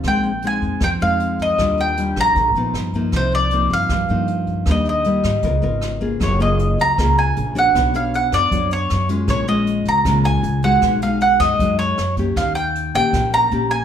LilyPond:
<<
  \new Staff \with { instrumentName = "Mandolin" } { \time 4/4 \key ees \major \tempo 4 = 156 g''4 aes''4 g''8 f''4 ees''8~ | ees''8 g''4 bes''2 r8 | c''8 d''4 f''2~ f''8 | ees''8 ees''2. r8 |
\key fis \major cis''8 dis''4 ais''4 gis''4 fis''8~ | fis''8 eis''8 fis''8 d''4 cis''4 r8 | cis''8 dis''4 ais''4 gis''4 fis''8~ | fis''8 eis''8 fis''8 dis''4 cis''4 r8 |
eis''8 g''4 g''4 ais''4 gis''8 | }
  \new Staff \with { instrumentName = "Nylon-string guitar" } { \time 4/4 \key ees \major << { <aes c' ees'>8 r8 <aes c' ees'>4 r8 <aes c' ees'>4. | <g d' f'>4 <g d' f'>4 r8 <f ces' ees'>4 <f ais dis'>8~ | <f ais dis'>4 <f bes ees'>4. <f bes ees'>4. | <g bes d'>4 <g bes>4 <ces' f' bes'>8 <ces' f' bes'>4 <bes f' aes'>8~ |
\key fis \major <bes f' aes'>8 <ais eis' gis'>4. <ais eis' gis'>4. <d' fis' cis''>8~ | <d' fis' cis''>8 <d' fis' cis''>4. <d' fis' cis''>4 r8 <gis cis' eis'>8~ | <gis cis' eis'>8 <gis cis' eis'>4. <gis cis' eis'>4. <gis dis' fis'>8~ | <gis dis' fis'>8 <gis dis' fis'>4. <gis dis' fis'>4 r8 <ais cis' g'>8~ |
<ais cis' g'>8 r4 <ais cis' g'>4. <ais cis' g'>8 r8 | } \\ { bes,2 f2 | ees2 bes,4 r4 | c2 g,2 | ees2 des2 |
fis2 cis2 | b2 fis2 | ais,2 ais,2 | b,2 fis2 |
dis2 ais,2 | } >> }
  \new Staff \with { instrumentName = "Upright bass" } { \clef bass \time 4/4 \key ees \major bes,,4. f,8 f,8 f,4. | ees,4. bes,,8 bes,,8 bes,,8 g,4 | c,4. g,8 g,8 g,4. | ees,4. aes,8 des,8 aes,,4. |
\key fis \major fis,,4. cis,8 cis,4 ais,,4 | b,,4. fis,8 fis,4 fis,4 | ais,,4. cis,8 cis,4 cis,4 | b,,4. fis,8 fis,4 fis,4 |
dis,4. ais,,8 ais,,4 ais,,4 | }
  \new DrumStaff \with { instrumentName = "Drums" } \drummode { \time 4/4 <hh bd ss>8 hh8 hh8 <hh bd>8 <hh bd ss>8 hh8 hh8 <hh bd>8 | <hh bd ss>8 hh8 hh8 <hh bd ss>8 <hh bd>8 hh8 <hh ss>8 <hh bd>8 | <hh bd ss>8 hh8 hh8 <hh bd>8 <hh bd ss>8 hh8 hh8 <hh bd>8 | <hh bd ss>8 hh8 hh8 <hh bd ss>8 <hh bd>8 hh8 <hh ss>8 <hh bd>8 |
<hh bd ss>8 hh8 hh8 hh8 <hh bd ss>8 hh8 hh8 hh8 | <hh bd ss>8 hh8 hh8 <hh ss>8 <hh bd>8 hh8 <hh ss>8 hh8 | <hh bd ss>8 hh8 hh8 hh8 <hh bd ss>8 hh8 hh8 hh8 | <hh bd ss>8 hh8 hh8 <hh bd ss>8 <hh bd>8 hh8 <hh ss>8 <hh bd>8 |
<hh bd ss>8 hh8 hh8 hh8 <hh bd ss>8 hh8 hh8 hh8 | }
>>